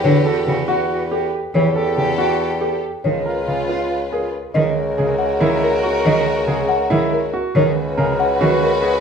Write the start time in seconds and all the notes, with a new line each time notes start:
Already playing: E2 G4 B4
0.04 D3 F#4 C#5
0.25 F#4 A4
0.47 C#3 F#4
0.68 F#4 F#5
0.91 F#4
1.11 F#4 G4 A4
1.54 E2 E3 G4 A4 C#5
1.76 G4 A4
1.97 C#3 G4
2.18 F#4 G4 F#5
2.40 G4
2.61 G4 A4
3.04 C#2 D#3 F4 B4 C#5
3.25 F4 A#4
3.47 C#3 F4
3.67 F4 F5
3.89 F4
4.11 F4 G#4 A#4
4.54 C#2 D#3 F#4 A#4 D#5
4.98 C#3 G#4
5.18 F#5
5.41 D#3 E4
5.63 A#4
5.83 F#4
6.05 D#3 D#5
6.47 C#3 G#4
6.69 F#5
6.90 D#3 E4
7.13 A#4
7.33 F#4
7.54 C#2 D#3 F#4 B4 C#5
7.97 C#3 A#4
8.20 F#5
8.41 D#3 F#4
8.63 A#4
8.83 G#4